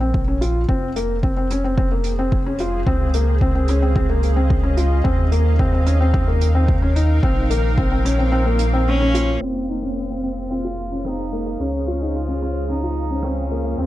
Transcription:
0.00 0.66 A#1 medium
0.00 0.19 C4 medium
0.14 kick medium
0.28 0.37 C#4 medium
0.41 0.60 F4 medium
0.41 closed hi-hat medium
0.68 2.84 F1 medium
0.68 0.88 C4 medium
0.68 5.05 G#4 medium
0.68 kick medium
0.96 1.15 A#3 medium
0.96 closed hi-hat medium
1.23 1.33 C4 medium
1.23 3.74 C5 medium
1.23 kick medium
1.37 1.46 C4 medium
1.50 1.60 C#4 medium
1.50 closed hi-hat medium
1.59 13.86 F5 medium
1.64 1.74 C4 medium
1.78 1.87 C4 medium
1.78 kick medium
1.92 2.10 A#3 medium
2.04 closed hi-hat medium
2.19 2.38 C4 medium
2.32 kick medium
2.46 2.56 C#4 medium
2.58 2.79 F4 medium
2.58 closed hi-hat medium
2.86 5.02 C#2 medium
2.86 3.06 C4 medium
2.86 5.92 C#4 medium
2.86 kick medium
3.14 3.33 A#3 medium
3.14 5.93 D#5 medium
3.14 closed hi-hat medium
3.41 3.51 C4 medium
3.41 kick medium
3.55 3.65 C4 medium
3.68 3.78 C#4 medium
3.68 closed hi-hat medium
3.82 3.92 C4 medium
3.96 4.05 C4 medium
3.96 kick medium
4.09 4.28 A#3 medium
4.23 closed hi-hat medium
4.36 4.55 C4 medium
4.50 kick medium
4.63 4.73 C#4 medium
4.77 4.96 F4 medium
4.77 closed hi-hat medium
5.04 7.20 D#2 medium
5.04 5.23 C4 medium
5.04 8.11 D#4 medium
5.04 kick medium
5.27 10.29 A#4 medium
5.32 5.51 A#3 medium
5.32 closed hi-hat medium
5.59 5.69 C4 medium
5.59 kick medium
5.73 5.82 C4 medium
5.86 5.96 C#4 medium
5.86 closed hi-hat medium
6.00 6.10 C4 medium
6.00 8.11 G5 medium
6.13 6.23 C4 medium
6.13 kick medium
6.28 6.47 A#3 medium
6.41 closed hi-hat medium
6.55 6.74 C4 medium
6.68 kick medium
6.82 6.92 C#4 medium
6.96 7.15 D#4 medium
6.96 closed hi-hat medium
7.23 9.39 A#1 medium
7.23 10.13 A#3 medium
7.23 7.42 C4 medium
7.23 kick medium
7.50 7.69 A#3 medium
7.50 closed hi-hat medium
7.78 7.87 C4 medium
7.78 kick medium
7.92 8.01 C4 medium
8.05 8.15 C#4 medium
8.05 closed hi-hat medium
8.19 8.28 C4 medium
8.19 9.42 C#5 medium
8.32 8.42 C4 medium
8.46 8.65 A#3 medium
8.59 closed hi-hat medium
8.74 8.92 C4 medium
8.88 9.45 C#4 loud
9.01 9.10 C#4 medium
9.14 9.33 F4 medium
9.14 closed hi-hat medium
9.41 11.57 F1 medium
9.41 9.60 C4 medium
9.41 9.97 C4 medium
9.41 13.78 G#4 medium
9.69 9.79 D#4 medium
9.83 10.01 C#4 medium
9.97 10.53 C4 medium
10.10 10.19 C4 medium
10.20 10.42 C4 medium
10.20 12.47 C5 medium
10.51 10.60 C4 medium
10.51 10.99 F4 medium
10.65 10.83 F4 medium
10.92 11.01 C#4 medium
10.99 11.08 F4 medium
11.05 11.24 C4 medium
11.05 11.62 D#4 medium
11.05 cross-stick medium
11.33 11.42 A#3 medium
11.46 11.56 A#3 medium
11.60 13.75 C#2 medium
11.60 11.79 C#4 medium
11.60 12.17 C#4 medium
11.60 13.86 F4 medium
11.88 11.97 F4 medium
12.02 12.20 D#4 medium
12.16 12.69 F4 medium
12.29 12.38 C#4 medium
12.42 12.61 C#4 medium
12.58 13.86 D#5 medium
12.70 12.79 C#4 medium
12.70 13.26 D#4 medium
12.83 13.02 F4 medium
13.10 13.20 C#4 medium
13.23 13.42 C4 medium
13.23 13.81 C#4 medium
13.23 cross-stick medium
13.51 13.61 A#3 medium
13.65 13.74 A#3 medium
13.78 13.86 D#2 medium
13.78 13.86 C4 medium

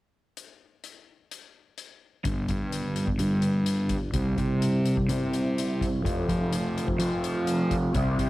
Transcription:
0.37 closed hi-hat soft
0.84 closed hi-hat soft
1.31 closed hi-hat soft
1.78 closed hi-hat soft
2.24 2.44 G1 medium
2.24 3.17 G2 medium
2.24 3.18 D3 medium
2.24 3.20 G3 medium
2.24 3.19 B3 medium
2.24 3.20 D4 medium
2.24 kick medium
2.24 closed hi-hat medium
2.48 3.04 G2 medium
2.48 kick medium
2.48 closed hi-hat soft
2.72 closed hi-hat medium
2.96 closed hi-hat soft
3.07 kick medium
3.18 4.13 G2 medium
3.18 3.93 G2 medium
3.18 4.12 D3 medium
3.18 4.13 G3 medium
3.18 4.14 B3 medium
3.18 4.14 D4 medium
3.18 closed hi-hat medium
3.42 closed hi-hat soft
3.66 closed hi-hat medium
3.89 kick medium
3.89 closed hi-hat medium
4.13 4.32 C2 medium
4.13 5.07 C3 medium
4.13 5.08 G3 medium
4.13 5.10 C4 medium
4.13 5.09 E4 medium
4.13 kick medium
4.13 closed hi-hat medium
4.38 4.93 C3 medium
4.38 kick medium
4.38 closed hi-hat soft
4.62 closed hi-hat medium
4.85 closed hi-hat soft
4.97 kick medium
5.08 6.02 C3 medium
5.08 5.83 C3 medium
5.08 6.03 G3 medium
5.08 6.05 C4 medium
5.08 6.04 E4 medium
5.08 closed hi-hat medium
5.33 closed hi-hat soft
5.58 closed hi-hat medium
5.81 kick medium
5.81 closed hi-hat soft
6.02 6.23 F2 medium
6.02 6.97 F3 medium
6.02 6.98 A3 medium
6.02 7.01 C4 medium
6.02 6.99 F4 medium
6.02 kick medium
6.06 closed hi-hat medium
6.29 6.84 F3 medium
6.29 kick medium
6.29 closed hi-hat soft
6.53 closed hi-hat medium
6.78 closed hi-hat soft
6.88 kick medium
6.98 7.93 F3 medium
6.98 7.73 F3 medium
6.98 7.94 A3 medium
6.98 7.94 C4 medium
6.98 7.94 F4 medium
6.98 closed hi-hat medium
7.24 closed hi-hat soft
7.47 closed hi-hat medium
7.71 kick medium
7.71 closed hi-hat soft
7.93 8.13 C2 medium
7.93 8.29 C3 medium
7.93 8.29 G3 medium
7.93 8.29 C4 medium
7.93 8.29 E4 medium
7.93 kick medium
7.93 closed hi-hat medium
8.19 8.29 C3 medium
8.19 kick medium
8.19 closed hi-hat soft

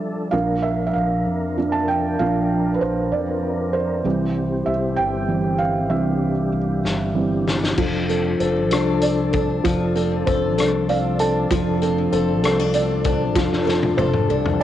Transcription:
0.00 4.00 F3 soft
0.00 0.29 G3 soft
0.00 0.29 A3 soft
0.00 0.29 D4 medium
0.00 4.00 D4 soft
0.00 0.28 A4 medium
0.00 0.34 D5 medium
0.00 0.34 E5 medium
0.31 0.91 A#1 medium
0.31 1.56 F3 soft
0.31 1.56 A#3 soft
0.31 1.56 D4 soft
0.31 4.01 A#4 medium
0.31 0.64 F5 medium
0.62 0.85 E5 medium
0.87 0.94 E5 medium
0.93 1.25 A#1 medium
0.93 1.75 F5 medium
1.26 2.16 F2 medium
1.57 1.85 F3 soft
1.57 1.86 A#3 soft
1.57 1.86 D4 soft
1.72 1.89 A5 medium
1.88 2.20 G5 medium
2.19 2.78 A#1 medium
2.19 3.09 F3 soft
2.19 3.09 A#3 soft
2.19 3.09 D4 soft
2.19 2.76 F5 medium
2.74 2.81 B4 medium
2.81 3.11 A#1 medium
2.81 3.13 C5 medium
3.12 4.01 F2 medium
3.12 3.76 D5 medium
3.73 4.69 C5 medium
4.04 4.63 C2 medium
4.04 4.93 E3 soft
4.04 7.74 E3 medium
4.04 4.94 G3 soft
4.04 5.88 C4 soft
4.04 4.94 C4 soft
4.04 7.74 G4 medium
4.66 4.96 C2 medium
4.66 4.98 E5 medium
4.96 5.91 G1 medium
4.96 5.61 G5 medium
5.28 5.56 E3 soft
5.28 5.56 G3 soft
5.28 5.56 C4 soft
5.58 5.91 F5 medium
5.90 6.49 C2 medium
5.90 6.31 E3 soft
5.90 6.32 G3 soft
5.90 6.32 C4 soft
5.90 7.76 D4 soft
5.90 6.56 E5 medium
6.52 6.82 C2 medium
6.83 7.74 G1 medium
6.83 snare soft
7.15 7.43 E3 soft
7.15 7.43 G3 soft
7.15 7.43 C4 soft
7.48 snare medium
7.63 snare medium
7.77 8.37 F1 medium
7.77 14.63 F3 medium
7.77 9.61 F3 medium
7.77 9.65 F3 medium
7.77 14.63 D4 medium
7.77 14.63 A4 medium
7.77 kick medium
7.77 crash medium
8.09 9.03 C4 soft
8.09 8.70 A4 soft
8.09 closed hi-hat soft
8.40 8.71 F1 medium
8.40 10.27 A4 soft
8.40 9.61 C5 soft
8.40 closed hi-hat soft
8.71 9.61 C2 medium
8.71 9.33 D4 medium
8.71 9.31 A4 soft
8.71 cross-stick loud
8.71 closed hi-hat medium
9.02 9.95 C4 medium
9.02 10.23 D5 soft
9.02 closed hi-hat medium
9.33 10.57 D4 medium
9.33 9.94 A4 medium
9.33 kick medium
9.33 closed hi-hat soft
9.64 10.23 F1 medium
9.64 11.46 F3 medium
9.64 11.51 F3 medium
9.64 kick medium
9.64 closed hi-hat medium
9.95 10.89 C4 medium
9.95 10.56 A4 medium
9.95 closed hi-hat soft
10.27 10.58 F1 medium
10.27 12.12 A4 medium
10.27 11.47 C5 medium
10.27 kick medium
10.27 closed hi-hat soft
10.58 11.46 C2 medium
10.58 11.20 D4 medium
10.58 11.18 A4 soft
10.58 cross-stick medium
10.58 closed hi-hat medium
10.89 11.81 C4 medium
10.89 12.09 D5 medium
10.89 11.18 F5 medium
10.89 closed hi-hat medium
11.19 12.43 D4 medium
11.19 11.81 A4 medium
11.19 11.48 A5 medium
11.19 closed hi-hat soft
11.50 12.08 F1 loud
11.50 13.32 F3 medium
11.50 13.36 F3 medium
11.50 kick loud
11.50 closed hi-hat medium
11.82 12.44 C4 medium
11.82 12.42 A4 medium
11.82 closed hi-hat soft
12.12 12.42 F1 medium
12.12 13.99 A4 medium
12.12 13.32 C5 medium
12.12 closed hi-hat soft
12.42 13.36 C2 medium
12.42 12.59 C4 medium
12.42 13.04 A4 medium
12.42 cross-stick loud
12.42 closed hi-hat medium
12.59 13.04 D4 soft
12.73 13.67 C4 medium
12.73 13.94 D5 medium
12.73 closed hi-hat medium
13.04 14.30 D4 medium
13.04 13.65 A4 soft
13.04 kick medium
13.04 closed hi-hat soft
13.36 13.94 F1 medium
13.36 14.63 F3 medium
13.36 kick loud
13.36 snare medium
13.53 snare medium
13.66 14.61 C4 medium
13.66 14.27 A4 medium
13.66 snare medium
13.83 high tom soft
13.98 14.28 F1 loud
13.98 14.63 A4 medium
13.98 14.63 C5 medium
13.98 high tom medium
14.14 mid tom medium
14.29 14.63 C2 medium
14.29 14.63 D4 medium
14.29 14.63 A4 medium
14.46 mid tom medium
14.60 14.63 D5 medium

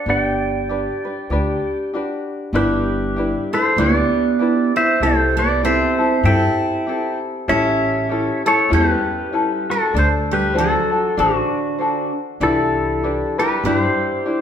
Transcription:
0.06 0.87 G1 medium
0.06 0.70 D4 medium
0.06 0.69 G4 medium
0.06 0.71 B4 medium
0.06 1.90 D5 medium
0.10 1.90 G5 medium
0.69 1.05 D4 medium
0.69 1.04 G4 medium
0.69 1.04 B4 medium
1.05 1.31 D4 soft
1.05 1.31 B4 medium
1.30 1.53 D2 medium
1.30 1.94 D4 medium
1.30 1.93 G4 medium
1.30 1.96 B4 medium
1.94 2.54 D4 medium
1.94 2.54 F#4 medium
1.94 2.53 G4 medium
1.94 2.55 B4 medium
2.53 3.33 G1 medium
2.53 3.48 G3 medium
2.53 3.16 D4 medium
2.53 3.18 E4 medium
2.53 3.16 G4 medium
2.53 3.16 B4 medium
2.53 3.53 B4 medium
2.57 3.49 G4 medium
3.16 3.52 D4 medium
3.16 3.51 E4 medium
3.16 3.51 G4 medium
3.16 3.53 B4 medium
3.52 3.77 A3 medium
3.52 3.77 D4 soft
3.52 3.78 E4 soft
3.52 3.77 A4 medium
3.52 3.80 C5 medium
3.76 4.00 D2 medium
3.76 4.71 B3 medium
3.76 4.39 D4 medium
3.76 4.41 E4 medium
3.76 4.39 G4 medium
3.76 4.40 B4 medium
3.76 4.72 B4 medium
3.81 4.76 D5 medium
4.39 4.75 D4 medium
4.39 4.76 E4 medium
4.39 4.75 G4 medium
4.39 4.76 B4 medium
4.76 5.00 C4 medium
4.76 5.02 D4 soft
4.76 5.01 E4 soft
4.76 5.00 C5 medium
4.76 5.03 E5 medium
5.00 5.81 C2 medium
5.00 5.35 A3 medium
5.00 5.63 E4 medium
5.00 5.63 G4 medium
5.00 5.64 A4 medium
5.00 5.35 A4 medium
5.00 5.38 C5 medium
5.37 5.61 B3 medium
5.37 5.62 B4 medium
5.37 5.64 D5 medium
5.63 5.99 C4 medium
5.63 6.21 C4 medium
5.63 5.97 E4 medium
5.63 5.98 G4 medium
5.63 5.97 A4 medium
5.63 6.22 C5 medium
5.63 6.24 E5 medium
5.98 6.25 C4 soft
5.98 6.25 E4 soft
5.98 6.24 A4 medium
6.23 6.47 G2 loud
6.23 6.86 C4 medium
6.23 7.18 E4 medium
6.23 6.88 E4 medium
6.23 6.86 G4 medium
6.23 6.89 A4 medium
6.23 7.18 E5 medium
6.23 7.18 G5 medium
6.87 7.48 C4 medium
6.87 7.49 E4 medium
6.87 7.48 G4 medium
6.87 7.49 A4 medium
7.48 8.28 A1 medium
7.48 8.10 C#4 medium
7.48 8.42 C#4 medium
7.48 8.10 E4 medium
7.48 8.08 G4 medium
7.48 8.11 A4 medium
7.48 8.42 C#5 medium
7.48 8.42 E5 loud
8.09 8.46 C#4 medium
8.09 8.46 E4 medium
8.09 8.45 G4 medium
8.09 8.44 A4 medium
8.46 8.70 A3 medium
8.46 8.69 C#4 soft
8.46 8.69 E4 medium
8.46 8.70 A4 medium
8.46 8.71 C#5 medium
8.70 8.94 E2 medium
8.70 9.65 G3 medium
8.70 9.31 C#4 medium
8.70 9.32 E4 medium
8.70 9.32 G4 medium
8.70 9.34 A4 medium
8.74 9.66 G4 medium
8.74 9.71 B4 loud
9.33 9.94 C#4 medium
9.33 9.94 E4 medium
9.33 9.95 A4 medium
9.70 9.94 F#3 medium
9.70 9.94 F#4 medium
9.70 9.96 A4 medium
9.94 10.74 D2 medium
9.94 10.06 A3 medium
9.94 10.54 D4 medium
9.94 10.54 A4 medium
9.94 10.07 A4 medium
9.99 10.08 C5 medium
10.31 10.55 G3 medium
10.31 10.56 G4 medium
10.31 10.59 B4 medium
10.54 10.91 D4 medium
10.54 10.91 F#4 medium
10.54 10.90 A4 medium
10.54 10.90 C5 medium
10.58 11.15 F#3 medium
10.58 11.15 F#4 medium
10.58 11.22 A4 medium
10.91 11.16 D4 soft
10.91 11.17 F#4 medium
10.91 11.17 A4 soft
11.17 11.41 A1 loud
11.17 12.11 D3 medium
11.17 11.79 D4 medium
11.17 12.12 D4 medium
11.17 11.79 F#4 medium
11.17 12.12 F#4 medium
11.17 11.79 A4 medium
11.17 11.78 C5 medium
11.78 12.40 D4 medium
11.78 12.41 F#4 medium
11.78 12.41 A4 medium
11.78 12.42 C5 medium
12.40 13.21 C2 medium
12.40 13.34 E3 medium
12.40 13.02 D4 medium
12.40 13.04 E4 medium
12.40 13.36 E4 medium
12.40 13.03 G4 medium
12.40 13.39 A4 medium
12.40 13.04 B4 medium
13.03 13.39 D4 medium
13.03 13.38 E4 medium
13.03 13.38 G4 medium
13.03 13.37 B4 medium
13.38 13.63 G3 medium
13.38 13.65 D4 soft
13.38 13.65 E4 soft
13.38 13.63 G4 medium
13.38 13.64 B4 soft
13.38 13.66 B4 medium
13.64 13.87 G2 loud
13.64 14.41 G3 medium
13.64 14.25 D4 medium
13.64 14.27 E4 medium
13.64 14.25 G4 medium
13.64 14.41 G4 medium
13.64 13.77 B4 medium
13.77 14.41 C5 medium
14.26 14.41 D4 medium
14.26 14.41 E4 medium
14.26 14.41 G4 medium

